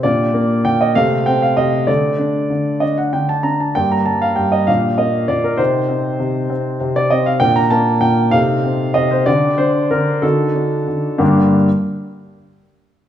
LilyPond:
<<
  \new Staff \with { instrumentName = "Grand piano" } { \time 6/8 \key g \minor \tempo 4. = 64 << { d''4 g''16 ees''16 f''8 g''16 f''16 ees''8 | d''4. ees''16 fis''16 g''16 a''16 bes''16 a''16 | g''16 bes''16 a''16 f''16 g''16 ees''16 f''8 ees''8 d''16 bes'16 | c''2~ c''16 d''16 ees''16 f''16 |
g''16 bes''16 a''8 g''8 f''4 ees''16 c''16 | d''8 c''8 bes'8 a'4. | <g, d bes d' g'>8 r2 r8 | } \\ { <d' g'>4. <a a'>4. | <a a'>2. | <bes g'>4. <d' g'>4. | <ees' g'>2. |
<d' bes'>4. <ees' a'>4. | <d' g'>4. <ees' fis'>4. | r2. | } >> }
  \new Staff \with { instrumentName = "Grand piano" } { \clef bass \time 6/8 \key g \minor bes,8 bes8 bes,8 c8 c'8 c8 | d8 d'8 d8 d'8 d8 d'8 | g,8 g8 g,8 bes,8 bes8 bes,8 | c8 c'8 c8 c'8 c8 c'8 |
bes,8 bes8 bes,8 c8 c'8 c8 | d8 d'8 d8 d8 d'8 d8 | r2. | }
>>